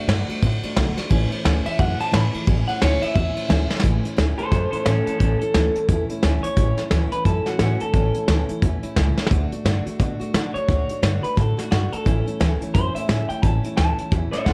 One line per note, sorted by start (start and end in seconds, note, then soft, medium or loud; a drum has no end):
0.08 0.26 G2 loud
0.08 0.29 D3 medium
0.08 0.29 A3 medium
0.08 0.28 D4 loud
0.08 0.27 F#4 loud
0.08 snare loud
0.08 ride medium
0.28 0.42 A3 medium
0.28 0.42 D4 medium
0.28 0.42 F#4 medium
0.28 muted upright bass stroke medium
0.28 ride medium
0.41 0.61 A2 loud
0.41 0.63 D3 medium
0.41 0.63 A3 medium
0.41 0.63 D4 medium
0.41 0.62 F#4 medium
0.41 kick loud
0.41 ride loud
0.63 0.76 A3 medium
0.63 0.76 D4 medium
0.63 0.77 F#4 medium
0.63 muted upright bass stroke medium
0.63 ride medium
0.76 0.95 B1 medium
0.76 0.97 D3 medium
0.76 0.97 A3 loud
0.76 0.96 D4 loud
0.76 0.95 F#4 loud
0.76 snare loud
0.76 ride medium
0.96 1.09 A3 soft
0.96 1.10 D4 medium
0.96 1.10 F#4 medium
0.96 muted upright bass stroke medium
0.96 snare soft
0.96 ride medium
1.09 1.29 A1 loud
1.09 1.31 A2 medium
1.09 1.31 E3 loud
1.09 1.31 A3 loud
1.09 1.30 C#4 loud
1.09 1.30 E4 loud
1.09 kick loud
1.09 ride medium
1.31 1.43 A3 medium
1.31 1.44 C#4 medium
1.31 1.44 E4 medium
1.31 muted upright bass stroke medium
1.31 ride medium
1.44 1.63 D2 medium
1.44 1.65 A2 medium
1.44 1.65 E3 medium
1.44 1.65 A3 medium
1.44 1.65 C#4 medium
1.44 1.63 E4 medium
1.44 snare loud
1.44 ride medium
1.65 1.77 A3 soft
1.65 1.77 C#4 medium
1.65 1.78 E4 medium
1.65 1.79 E5 loud
1.65 muted upright bass stroke medium
1.65 ride medium
1.77 1.97 F#2 medium
1.77 1.99 E3 medium
1.77 1.99 A3 medium
1.77 1.98 C#4 medium
1.77 1.97 E4 medium
1.77 1.99 F#5 loud
1.77 kick loud
1.77 ride medium
1.98 2.11 A3 soft
1.98 2.11 C#4 medium
1.98 2.11 E4 medium
1.98 2.15 A5 loud
1.98 muted upright bass stroke medium
1.98 ride medium
2.11 2.33 A2 medium
2.11 2.32 A2 medium
2.11 2.33 E3 medium
2.11 2.33 A3 medium
2.11 2.33 C#4 medium
2.11 2.31 E4 medium
2.11 2.67 B5 loud
2.11 snare loud
2.11 ride medium
2.33 2.46 A3 soft
2.33 2.46 C#4 medium
2.33 2.47 E4 medium
2.33 muted upright bass stroke medium
2.33 ride medium
2.47 2.66 A1 loud
2.47 2.68 A2 medium
2.47 2.68 E3 medium
2.47 2.67 A3 medium
2.47 2.66 C#4 medium
2.47 2.65 E4 medium
2.47 kick loud
2.47 ride medium
2.66 2.80 A3 medium
2.66 2.81 C#4 medium
2.66 2.81 E4 medium
2.66 2.81 F#5 medium
2.66 muted upright bass stroke medium
2.66 ride medium
2.81 3.00 D2 loud
2.81 3.02 A2 medium
2.81 3.02 E3 medium
2.81 3.01 A3 loud
2.81 3.00 C#4 medium
2.81 2.99 E4 loud
2.81 3.01 C#5 loud
2.81 snare loud
2.81 ride medium
3.00 3.14 A3 soft
3.00 3.14 C#4 medium
3.00 3.14 E4 medium
3.00 3.14 E5 loud
3.00 muted upright bass stroke medium
3.00 ride medium
3.14 3.34 E2 loud
3.14 3.35 E3 medium
3.14 3.35 A3 medium
3.14 3.34 C#4 medium
3.14 3.33 E4 medium
3.14 3.82 E5 loud
3.14 kick loud
3.14 ride medium
3.34 3.47 A3 soft
3.34 3.48 C#4 medium
3.34 3.49 E4 medium
3.34 ride medium
3.48 3.68 D2 medium
3.48 3.69 A2 medium
3.48 3.70 E3 medium
3.48 3.69 A3 medium
3.48 3.68 C#4 loud
3.48 3.67 E4 loud
3.48 snare loud
3.48 ride medium
3.68 3.82 A3 medium
3.68 3.82 C#4 medium
3.68 3.83 E4 medium
3.68 snare medium
3.80 4.04 A2 medium
3.80 4.04 E3 medium
3.80 4.03 C#4 medium
3.80 snare loud
3.84 4.02 A1 medium
3.84 4.04 A3 loud
3.84 4.02 E4 medium
3.84 kick loud
3.84 closed hi-hat medium
4.04 4.16 A3 soft
4.04 4.16 C#4 medium
4.04 4.17 E4 medium
4.04 closed hi-hat medium
4.16 4.36 D2 medium
4.16 4.38 A2 medium
4.16 4.38 E3 medium
4.16 4.38 A3 medium
4.16 4.38 C#4 medium
4.16 4.36 E4 loud
4.16 snare loud
4.16 closed hi-hat medium
4.37 4.51 A3 soft
4.37 4.52 C#4 soft
4.37 4.51 E4 soft
4.37 4.50 A4 medium
4.37 4.50 C5 medium
4.37 closed hi-hat medium
4.51 4.70 F#2 medium
4.51 4.72 E3 medium
4.51 4.73 A3 medium
4.51 4.72 C#4 medium
4.51 4.71 E4 medium
4.51 4.70 A4 medium
4.51 4.70 C5 medium
4.51 kick loud
4.51 snare soft
4.51 closed hi-hat medium
4.71 4.85 C#4 soft
4.71 4.85 E4 medium
4.71 4.84 A4 medium
4.71 4.85 C5 medium
4.71 muted upright bass stroke medium
4.71 closed hi-hat medium
4.75 4.85 A3 soft
4.85 5.06 A2 medium
4.85 5.05 A2 medium
4.85 5.07 E3 medium
4.85 5.07 A3 medium
4.85 5.04 C#4 medium
4.85 5.06 C#4 medium
4.85 5.05 E4 medium
4.85 5.05 A4 medium
4.85 snare loud
4.85 closed hi-hat medium
5.06 5.20 A3 soft
5.06 5.17 C#4 medium
5.06 5.20 C#4 medium
5.06 5.20 E4 medium
5.06 5.17 A4 medium
5.06 muted upright bass stroke medium
5.06 closed hi-hat medium
5.18 5.39 A1 medium
5.18 5.41 A2 medium
5.18 5.41 E3 medium
5.18 5.41 A3 medium
5.18 5.38 C#4 medium
5.18 5.41 C#4 medium
5.18 5.40 E4 medium
5.18 5.38 A4 medium
5.18 kick loud
5.18 closed hi-hat medium
5.39 5.54 A3 soft
5.39 5.55 C#4 soft
5.39 5.54 E4 medium
5.39 6.07 A4 loud
5.39 closed hi-hat medium
5.54 5.73 D2 medium
5.54 5.75 A2 medium
5.54 5.75 E3 medium
5.54 5.76 A3 medium
5.54 5.76 C#4 medium
5.54 5.74 E4 medium
5.54 snare loud
5.54 closed hi-hat medium
5.75 5.88 A3 soft
5.75 5.89 C#4 soft
5.75 5.89 E4 medium
5.75 closed hi-hat medium
5.88 6.07 E2 medium
5.88 6.09 E3 medium
5.88 6.10 A3 medium
5.88 6.10 C#4 medium
5.88 6.09 E4 medium
5.88 kick loud
5.88 closed hi-hat medium
6.09 6.22 A3 soft
6.09 6.22 C#4 medium
6.09 6.23 E4 medium
6.09 muted upright bass stroke medium
6.09 closed hi-hat medium
6.22 6.42 D2 medium
6.22 6.43 A2 medium
6.22 6.44 E3 medium
6.22 6.44 A3 medium
6.22 6.43 C#4 medium
6.22 6.42 E4 loud
6.22 snare loud
6.22 closed hi-hat medium
6.43 6.56 A3 soft
6.43 6.56 C#4 soft
6.43 6.56 E4 medium
6.43 7.10 C#5 loud
6.43 muted upright bass stroke medium
6.43 closed hi-hat medium
6.56 6.75 A1 medium
6.56 6.77 A2 medium
6.56 6.78 E3 medium
6.56 6.78 A3 medium
6.56 6.77 C#4 medium
6.56 6.76 E4 medium
6.56 kick loud
6.56 closed hi-hat medium
6.77 6.91 A3 soft
6.77 6.91 C#4 medium
6.77 6.91 E4 medium
6.77 snare soft
6.77 closed hi-hat medium
6.91 7.10 D2 loud
6.91 7.12 A2 medium
6.91 7.12 E3 medium
6.91 7.12 A3 medium
6.91 7.12 C#4 medium
6.91 7.11 E4 loud
6.91 snare loud
6.91 closed hi-hat medium
7.12 7.25 A3 soft
7.12 7.26 C#4 soft
7.12 7.25 E4 medium
7.12 7.25 B4 medium
7.12 closed hi-hat medium
7.25 7.44 F#2 medium
7.25 7.46 E3 medium
7.25 7.47 A3 medium
7.25 7.47 C#4 medium
7.25 7.45 E4 medium
7.25 7.46 A4 medium
7.25 kick loud
7.25 closed hi-hat medium
7.46 7.60 A3 soft
7.46 7.60 C#4 medium
7.46 7.60 E4 medium
7.46 7.58 F#4 medium
7.46 muted upright bass stroke medium
7.46 snare soft
7.46 closed hi-hat medium
7.59 7.78 A2 medium
7.59 7.81 A2 medium
7.59 7.81 E3 medium
7.59 7.81 A3 medium
7.59 7.81 C#4 loud
7.59 7.80 E4 medium
7.59 7.80 F#4 medium
7.59 snare loud
7.59 closed hi-hat medium
7.80 7.94 A3 soft
7.80 7.94 C#4 medium
7.80 7.94 E4 soft
7.80 8.47 A4 medium
7.80 muted upright bass stroke medium
7.80 closed hi-hat medium
7.93 8.12 A1 medium
7.93 8.15 A2 medium
7.93 8.15 E3 medium
7.93 8.16 A3 medium
7.93 8.15 C#4 medium
7.93 8.14 E4 medium
7.93 kick loud
7.93 closed hi-hat medium
8.14 8.28 A3 soft
8.14 8.28 C#4 soft
8.14 8.28 E4 medium
8.14 closed hi-hat medium
8.28 8.47 D2 medium
8.28 8.49 A2 medium
8.28 8.49 E3 medium
8.28 8.49 A3 medium
8.28 8.49 C#4 medium
8.28 8.48 E4 loud
8.28 snare loud
8.28 closed hi-hat medium
8.49 8.62 A3 soft
8.49 8.63 C#4 soft
8.49 8.62 E4 medium
8.49 muted upright bass stroke medium
8.49 closed hi-hat medium
8.62 8.81 E2 medium
8.62 8.83 E3 medium
8.62 8.84 A3 medium
8.62 8.83 C#4 medium
8.62 8.82 E4 medium
8.62 kick loud
8.62 closed hi-hat medium
8.83 8.97 A3 soft
8.83 8.97 C#4 medium
8.83 8.97 E4 medium
8.83 muted upright bass stroke medium
8.83 closed hi-hat medium
8.96 9.15 C#2 medium
8.96 9.18 A2 medium
8.96 9.18 E3 medium
8.96 9.18 A3 medium
8.96 9.18 C#4 loud
8.96 9.17 E4 medium
8.96 kick medium
8.96 snare loud
8.96 closed hi-hat medium
9.17 9.30 A3 soft
9.17 9.31 C#4 medium
9.17 9.31 E4 medium
9.17 muted upright bass stroke medium
9.17 snare medium
9.27 snare medium
9.31 9.50 D2 medium
9.31 9.52 D3 medium
9.31 9.52 A3 medium
9.31 9.52 D4 medium
9.31 9.51 F#4 medium
9.31 kick loud
9.31 closed hi-hat medium
9.52 9.64 A3 soft
9.52 9.65 D4 medium
9.52 9.65 F#4 medium
9.52 closed hi-hat medium
9.65 9.83 G2 medium
9.65 9.86 D3 medium
9.65 9.86 A3 medium
9.65 9.86 D4 medium
9.65 9.85 F#4 loud
9.65 snare loud
9.65 closed hi-hat medium
9.86 9.99 A3 soft
9.86 9.99 D4 medium
9.86 10.00 F#4 medium
9.86 muted upright bass stroke medium
9.86 closed hi-hat medium
9.99 10.18 B2 medium
9.99 10.20 D3 medium
9.99 10.20 A3 medium
9.99 10.20 D4 medium
9.99 10.18 F#4 medium
9.99 kick loud
9.99 closed hi-hat medium
10.20 10.33 A3 medium
10.20 10.34 D4 medium
10.20 10.34 F#4 medium
10.20 muted upright bass stroke medium
10.20 closed hi-hat medium
10.34 10.55 D3 medium
10.34 10.52 D3 medium
10.34 10.55 A3 medium
10.34 10.54 D4 loud
10.34 10.53 F#4 loud
10.34 snare loud
10.34 closed hi-hat medium
10.54 10.67 A3 soft
10.54 10.68 D4 soft
10.54 10.68 F#4 soft
10.54 11.21 C#5 loud
10.54 muted upright bass stroke medium
10.54 closed hi-hat medium
10.68 10.87 D2 medium
10.68 10.89 D3 medium
10.68 10.89 A3 medium
10.68 10.89 D4 medium
10.68 10.89 F#4 medium
10.68 kick loud
10.68 closed hi-hat medium
10.89 11.01 A3 soft
10.89 11.02 D4 medium
10.89 11.03 F#4 medium
10.89 closed hi-hat medium
11.02 11.21 G2 medium
11.02 11.23 D3 medium
11.02 11.23 A3 medium
11.02 11.22 D4 loud
11.02 11.21 F#4 medium
11.02 snare loud
11.02 closed hi-hat medium
11.22 11.35 A3 soft
11.22 11.36 D4 soft
11.22 11.36 F#4 soft
11.22 11.38 B4 medium
11.22 muted upright bass stroke medium
11.22 closed hi-hat medium
11.36 11.56 A2 medium
11.36 11.57 D3 medium
11.36 11.58 A3 medium
11.36 11.56 D4 medium
11.36 11.56 F#4 medium
11.36 11.59 A4 medium
11.36 kick loud
11.36 snare soft
11.36 closed hi-hat medium
11.57 11.70 A3 soft
11.57 11.71 D4 soft
11.57 11.71 F#4 medium
11.57 11.70 F#4 medium
11.57 muted upright bass stroke medium
11.57 snare soft
11.57 closed hi-hat medium
11.70 11.90 G2 medium
11.70 11.92 D3 medium
11.70 11.92 A3 medium
11.70 11.91 D4 medium
11.70 11.92 F#4 medium
11.70 11.90 F#4 medium
11.70 snare loud
11.70 closed hi-hat medium
11.91 12.05 A3 soft
11.91 12.06 D4 soft
11.91 12.05 F#4 medium
11.91 12.59 A4 loud
11.91 muted upright bass stroke medium
11.91 closed hi-hat medium
12.05 12.24 A1 medium
12.05 12.26 A2 medium
12.05 12.27 E3 medium
12.05 12.27 A3 medium
12.05 12.26 C#4 medium
12.05 12.25 E4 medium
12.05 kick loud
12.05 snare soft
12.05 closed hi-hat medium
12.26 12.40 A3 soft
12.26 12.40 C#4 soft
12.26 12.40 E4 medium
12.26 muted upright bass stroke medium
12.26 closed hi-hat medium
12.40 12.59 D2 medium
12.40 12.61 A2 loud
12.40 12.61 E3 medium
12.40 12.61 A3 medium
12.40 12.61 C#4 loud
12.40 12.60 E4 medium
12.40 snare loud
12.40 closed hi-hat medium
12.61 12.73 A3 soft
12.61 12.74 C#4 medium
12.61 12.75 E4 medium
12.61 muted upright bass stroke medium
12.61 closed hi-hat medium
12.74 12.93 F#2 medium
12.74 12.95 E3 medium
12.74 12.96 A3 medium
12.74 12.95 C#4 medium
12.74 12.93 E4 medium
12.74 12.95 C5 loud
12.74 kick loud
12.74 closed hi-hat medium
12.95 13.08 A3 soft
12.95 13.08 C#4 medium
12.95 13.08 E4 medium
12.95 13.28 E5 medium
12.95 muted upright bass stroke medium
12.95 closed hi-hat medium
13.08 13.29 A2 medium
13.08 13.27 A2 medium
13.08 13.30 E3 medium
13.08 13.30 A3 medium
13.08 13.29 C#4 medium
13.08 13.28 E4 medium
13.08 snare loud
13.08 closed hi-hat medium
13.29 13.42 A3 soft
13.29 13.42 C#4 soft
13.29 13.43 E4 medium
13.29 13.42 G5 medium
13.29 muted upright bass stroke medium
13.29 closed hi-hat medium
13.42 13.62 A1 medium
13.42 13.64 A2 medium
13.42 13.64 E3 medium
13.42 13.64 A3 medium
13.42 13.63 C#4 medium
13.42 13.62 E4 medium
13.42 13.76 A5 medium
13.42 kick loud
13.42 closed hi-hat medium
13.63 13.76 A3 soft
13.63 13.77 C#4 medium
13.63 13.77 E4 medium
13.63 closed hi-hat medium
13.77 13.96 D2 medium
13.77 13.98 A2 medium
13.77 13.98 E3 medium
13.77 13.99 A3 medium
13.77 13.98 C#4 medium
13.77 13.97 E4 medium
13.77 14.11 A5 loud
13.77 snare loud
13.77 closed hi-hat medium
13.98 14.10 A3 soft
13.98 14.11 C#4 soft
13.98 14.12 E4 soft
13.98 muted upright bass stroke medium
13.98 closed hi-hat medium
14.11 14.31 E2 loud
14.11 14.32 E3 medium
14.11 14.33 A3 medium
14.11 14.32 C#4 medium
14.11 14.31 E4 medium
14.11 kick loud
14.11 snare soft
14.11 closed hi-hat medium
14.31 14.45 A3 soft
14.31 14.45 C#4 medium
14.31 14.46 E4 medium
14.31 14.46 C#5 medium
14.31 14.46 E5 medium
14.31 muted upright bass stroke medium
14.31 snare soft
14.31 closed hi-hat medium
14.45 14.53 D2 medium
14.45 14.53 A2 medium
14.45 14.53 E3 medium
14.45 14.53 A3 medium
14.45 14.53 C#4 medium
14.45 14.53 E4 medium
14.45 14.53 A4 medium
14.45 14.53 F#5 medium
14.45 kick medium
14.45 snare medium